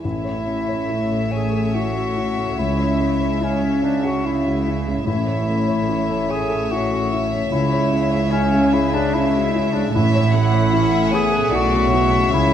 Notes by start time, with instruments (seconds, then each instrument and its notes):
0.01 felt piano A1, double bass section A1, cello section A2, viola section A3, french horn section A3 C#4, clarinet E4, violin section C#5 E5, flute E5
0.25 felt piano C#5
0.47 felt piano A3
0.69 felt piano C#5
0.89 felt piano E4
1.11 felt piano A3
1.31 clarinet G#4, felt piano C#5, flute G#5
1.52 felt piano A4
1.74 felt piano E4, clarinet F#4, flute F#5
1.96 felt piano F#4
2.17 felt piano E4
2.38 felt piano A3
2.57 double bass section C#2, felt piano C#2, cello section C#3, french horn section G#3, viola section G#3, clarinet E4, flute E5
2.79 felt piano C#5
3.00 felt piano G#3
3.21 felt piano C#5
3.41 clarinet C#4, felt piano E4, flute C#5
3.63 felt piano G#3
3.83 clarinet D4, felt piano C#5, flute D5
4.03 clarinet F#4, felt piano G#4, flute F#5
4.25 felt piano E4, clarinet E4, flute E5
4.46 felt piano F#4
4.67 felt piano E4
4.87 felt piano G#3
5.05 felt piano A1, double bass section A1, cello section A2, french horn section A3 C#4, viola section A3, clarinet E4, violin section C#5 E5, flute E5
5.27 felt piano C#5
5.49 felt piano A3
5.68 felt piano C#5
5.89 felt piano E4
6.09 felt piano A3
6.29 clarinet G#4, felt piano C#5, flute G#5
6.50 felt piano A4
6.71 felt piano E4, clarinet F#4, flute F#5
6.91 felt piano F#4
7.13 felt piano E4
7.33 felt piano A3
7.51 double bass section C#2, felt piano C#2, cello section C#3, french horn section G#3, viola section G#3, clarinet E4, flute E5
7.73 felt piano C#5
7.92 felt piano G#3
8.11 felt piano C#5
8.31 clarinet C#4, felt piano E4, flute C#5
8.53 felt piano G#3
8.73 clarinet E4, felt piano C#5, flute E5
8.94 clarinet D4, felt piano G#4, flute D5
9.14 clarinet E4, felt piano E4, flute E5
9.36 felt piano F#4
9.55 felt piano E4
9.73 felt piano G#3, clarinet D4, flute D5
9.93 double bass section A1, felt piano A1, cello section A2, french horn section C#3 A3, viola section A3, clarinet E4, violin section C#5 E5, flute E5
10.15 felt piano C#5
10.33 felt piano A3, violin section F#5
10.53 felt piano C#5
10.72 viola section C#4, felt piano E4, violin section E5
10.91 felt piano A3
11.11 viola section B3, clarinet G#4, felt piano C#5, flute G#5
11.32 felt piano A4
11.50 double bass section B1, cello section B2, viola section A3, felt piano E4, violin section D5 E5, flute F#5
11.55 clarinet F#4
11.72 felt piano F#4
11.91 felt piano E4, violin section C#5
12.12 felt piano A3
12.30 felt piano C#2, double bass section C#2, cello section C#3, viola section G#3, french horn section G#3, clarinet E4, flute E5